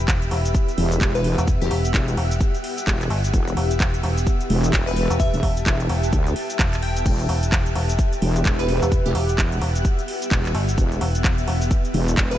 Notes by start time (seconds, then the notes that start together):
Already playing: B3 G4 E5
0.00 F#5
0.08 E1, kick, clap, closed hi-hat, cabasa
0.22 closed hi-hat, cabasa
0.31 E1, open hi-hat
0.45 closed hi-hat, cabasa
0.55 kick, closed hi-hat, cabasa
0.69 closed hi-hat, cabasa
0.78 E1, open hi-hat
0.92 closed hi-hat, cabasa
1.01 E1, kick, clap, closed hi-hat, cabasa
1.15 B4, closed hi-hat, cabasa
1.24 B4, open hi-hat
1.38 E1, closed hi-hat, cabasa
1.48 kick, closed hi-hat, cabasa
1.61 E1 G4, closed hi-hat, cabasa
1.71 E1 G4, open hi-hat
1.85 closed hi-hat, cabasa
1.94 E1, kick, clap, closed hi-hat, cabasa
2.08 closed hi-hat, cabasa
2.17 E1, open hi-hat
2.31 closed hi-hat, cabasa
2.41 kick, closed hi-hat, cabasa
2.55 closed hi-hat, cabasa
2.64 open hi-hat
2.78 closed hi-hat, cabasa
2.87 E1, kick, clap, closed hi-hat, cabasa
3.01 clap, closed hi-hat, cabasa
3.10 G1, open hi-hat
3.24 closed hi-hat, cabasa
3.34 E1, kick, closed hi-hat, cabasa
3.48 closed hi-hat, cabasa
3.57 E1, open hi-hat
3.71 A5, closed hi-hat, cabasa
3.80 E1, kick, clap, closed hi-hat, cabasa
3.94 closed hi-hat, cabasa
4.03 E1, open hi-hat
4.17 closed hi-hat, cabasa
4.27 kick, closed hi-hat, cabasa
4.41 closed hi-hat, cabasa
4.50 E1, open hi-hat
4.64 closed hi-hat, cabasa
4.73 E1, kick, clap, closed hi-hat, cabasa
4.87 B4, closed hi-hat, cabasa
4.96 B4, open hi-hat
5.10 E1, closed hi-hat, cabasa
5.20 E5, kick, closed hi-hat, cabasa
5.34 E1 E5, closed hi-hat, cabasa
5.43 E1, kick, open hi-hat
5.57 closed hi-hat, cabasa
5.66 E1, kick, clap, closed hi-hat, cabasa
5.80 closed hi-hat, cabasa
5.89 E1, open hi-hat
6.03 closed hi-hat, cabasa
6.13 D2, kick, closed hi-hat, cabasa
6.27 closed hi-hat, cabasa
6.36 open hi-hat
6.50 closed hi-hat, cabasa
6.59 E1, kick, clap, closed hi-hat, cabasa
6.73 clap, closed hi-hat, cabasa
6.82 G5, open hi-hat
6.96 closed hi-hat, cabasa
7.06 E1, kick, closed hi-hat, crash, cabasa
7.20 closed hi-hat, cabasa
7.29 E1, open hi-hat
7.43 F#5, closed hi-hat, cabasa
7.52 E1, kick, clap, closed hi-hat, cabasa
7.66 closed hi-hat, cabasa
7.75 E1, open hi-hat
7.89 closed hi-hat, cabasa
7.99 kick, closed hi-hat, cabasa
8.13 closed hi-hat, cabasa
8.22 E1, open hi-hat
8.36 closed hi-hat, cabasa
8.45 E1, kick, clap, closed hi-hat, cabasa
8.59 B4, closed hi-hat, cabasa
8.69 B4, open hi-hat
8.82 E1, closed hi-hat, cabasa
8.92 kick, closed hi-hat, cabasa
9.06 E1 G4, closed hi-hat, cabasa
9.15 E1 G4, open hi-hat
9.29 closed hi-hat, cabasa
9.38 E1, kick, clap, closed hi-hat, cabasa
9.52 closed hi-hat, cabasa
9.61 E1, open hi-hat
9.75 closed hi-hat, cabasa
9.85 kick, closed hi-hat, cabasa
9.99 closed hi-hat, cabasa
10.08 open hi-hat
10.22 closed hi-hat, cabasa
10.31 E1, kick, clap, closed hi-hat, cabasa
10.45 clap, closed hi-hat, cabasa
10.55 G1, open hi-hat
10.69 closed hi-hat, cabasa
10.78 E1, kick, closed hi-hat, cabasa
10.92 closed hi-hat, cabasa
11.01 E1, open hi-hat
11.15 G5, closed hi-hat, cabasa
11.24 E1, kick, clap, closed hi-hat, cabasa
11.38 closed hi-hat, cabasa
11.48 E1, open hi-hat
11.62 closed hi-hat, cabasa
11.71 kick, closed hi-hat, cabasa
11.85 closed hi-hat, cabasa
11.94 E1, open hi-hat
12.08 closed hi-hat, cabasa
12.17 E1, kick, clap, closed hi-hat, cabasa
12.31 B4, closed hi-hat, cabasa